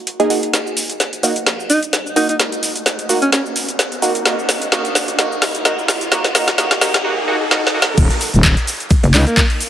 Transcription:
0.07 closed hi-hat
0.20 synth stab A#3 D#4 G#4, closed hi-hat
0.30 synth stab A#3 D#4 F#4, open hi-hat
0.43 closed hi-hat
0.53 snare, closed hi-hat, riser, shaker
0.67 shaker
0.77 open hi-hat, shaker
0.90 closed hi-hat, shaker
1.00 snare, closed hi-hat, shaker
1.13 closed hi-hat, shaker
1.23 synth stab A#3 D#4 F#4, open hi-hat, shaker
1.36 closed hi-hat, shaker
1.47 snare, closed hi-hat, shaker
1.60 shaker
1.70 alto saxophone D#4, open hi-hat, shaker
1.83 closed hi-hat, shaker
1.93 snare, closed hi-hat, shaker
2.07 shaker
2.16 synth stab A#3 D#4 F#4, alto saxophone D#4, open hi-hat, shaker
2.29 alto saxophone D#4, closed hi-hat, shaker
2.40 snare, closed hi-hat, shaker
2.52 closed hi-hat, shaker
2.63 open hi-hat, shaker
2.76 closed hi-hat, shaker
2.86 snare, closed hi-hat, shaker
2.99 closed hi-hat, shaker
3.09 synth stab A#3 D#4 F#4, open hi-hat, shaker
3.22 alto saxophone C#4, closed hi-hat, shaker
3.32 alto saxophone C#4, snare, closed hi-hat, shaker
3.46 shaker
3.56 open hi-hat, shaker
3.69 closed hi-hat, shaker
3.79 snare, closed hi-hat, shaker
3.92 closed hi-hat, shaker
4.02 synth stab A#3 D#4 F#4, open hi-hat, shaker
4.15 closed hi-hat, shaker
4.25 synth stab A#3 D#4 F#4, snare, closed hi-hat, shaker
4.39 shaker
4.49 snare, open hi-hat, shaker
4.62 closed hi-hat, shaker
4.72 synth stab A#3 D#4 F#4, snare, closed hi-hat, shaker
4.85 closed hi-hat, shaker
4.95 snare, open hi-hat, shaker
5.08 closed hi-hat, shaker
5.19 synth stab A#3 D#4 F#4, snare, closed hi-hat, shaker
5.32 shaker
5.42 snare, open hi-hat, shaker
5.55 closed hi-hat, shaker
5.65 synth stab A#3 D#4 F#4, snare, closed hi-hat, shaker
5.79 shaker
5.88 snare, open hi-hat, shaker
6.01 closed hi-hat, shaker
6.12 synth stab A#3 D#4 F#4, snare, closed hi-hat, shaker
6.24 snare, closed hi-hat, shaker
6.35 synth stab A#3 D#4 F#4, snare, open hi-hat, shaker
6.48 snare, closed hi-hat, shaker
6.58 synth stab A#3 D#4 F#4, snare, closed hi-hat, shaker
6.71 snare, closed hi-hat, shaker
6.81 synth stab A#3 D#4 F#4, snare, open hi-hat, shaker
6.94 snare, closed hi-hat, shaker
7.04 synth stab A#3 D#4 F#4, swell
7.28 synth stab A#3 D#4 F#4
7.51 synth stab A#3 D#4 F#4, snare
7.67 snare
7.74 synth stab A#3 D#4 F#4
7.82 snare
7.98 fm bass D#1, kick, closed hi-hat, ride, crash, shaker
8.10 snare, closed hi-hat, shaker
8.20 open hi-hat, shaker
8.34 fm bass D#1, closed hi-hat, shaker
8.44 kick, snare, clap, closed hi-hat, ride, shaker
8.57 snare, closed hi-hat, shaker
8.67 snare, open hi-hat, shaker
8.80 closed hi-hat, shaker
8.90 kick, closed hi-hat, ride, shaker
9.03 wobble bass F#1, closed hi-hat, shaker
9.14 fm bass C#2, alto saxophone D#4, clap, open hi-hat, shaker
9.27 alto saxophone A#3, closed hi-hat, shaker
9.37 kick, snare, clap, closed hi-hat, open hi-hat, ride, shaker
9.50 closed hi-hat, shaker
9.60 open hi-hat, shaker

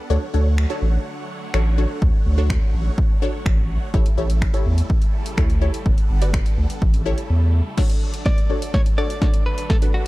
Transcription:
Already playing: supersaw synth F#5
0.10 sub bass D2, supersaw synth D3 F#3 A3 C#5, synth pluck D4 F#4 A4 C#5
0.34 sub bass D2, synth pluck D4 F#4 A4 C#5
0.58 finger snap
0.70 synth pluck D4 F#4 A4 C#5
0.82 sub bass A1
1.54 sub bass A1, synth pluck D4 F#4 A4 C#5, finger snap
1.78 synth pluck D4 F#4 A4 C#5
2.02 sub bass D2, kick
2.26 sub bass D2
2.38 synth pluck D4 F#4 A4 C#5
2.50 finger snap, kick
2.74 sub bass A1
2.98 kick
3.22 synth pluck D4 F#4 A4 C#5
3.46 sub bass A1, finger snap, kick
3.94 sub bass A1, supersaw synth C#3 G3 A3 E4 A4, synth pluck E4 G4 A4 C#5, kick
4.06 closed hi-hat
4.17 sub bass A1, synth pluck E4 G4 A4 C#5
4.30 closed hi-hat
4.42 finger snap, kick
4.54 synth pluck E4 G4 A4 C#5, closed hi-hat
4.66 sub bass E2
4.78 closed hi-hat
4.90 kick
5.02 closed hi-hat
5.26 closed hi-hat
5.37 sub bass D2, synth pluck E4 G4 A4 C#5, finger snap, kick
5.50 closed hi-hat
5.61 synth pluck E4 G4 A4 C#5
5.74 closed hi-hat
5.86 sub bass G1, supersaw synth D3 B3 F#5, kick
5.98 closed hi-hat
6.10 sub bass G1
6.21 synth pluck F#4 G4 B4 D5, closed hi-hat
6.34 finger snap, kick
6.46 closed hi-hat
6.58 sub bass D2
6.70 closed hi-hat
6.82 sub bass A1, supersaw synth C#3 A3 E4, kick
6.94 closed hi-hat
7.06 synth pluck E4 G4 A4 C#5
7.18 closed hi-hat
7.30 sub bass E2
7.77 supersaw synth D3 F#3 A3 D4 A4, synth pluck D4 F#4 A4 C#5, kick, snare, crash
7.90 closed hi-hat
8.14 closed hi-hat
8.26 clean electric guitar D5, kick, snare
8.38 closed hi-hat
8.50 synth pluck D4 F#4 A4 C#5
8.62 closed hi-hat
8.74 clean electric guitar C#5, kick, snare
8.86 closed hi-hat
8.98 synth pluck D4 F#4 A4 C#5, clean electric guitar D5
9.10 closed hi-hat
9.22 synth pluck D4 F#4 A4 C#5, kick, snare
9.34 closed hi-hat
9.46 clean electric guitar B4
9.58 closed hi-hat
9.70 clean electric guitar A4, supersaw synth B4, kick, snare
9.82 synth pluck D4 F#4 A4 B4, closed hi-hat
9.94 clean electric guitar F#4

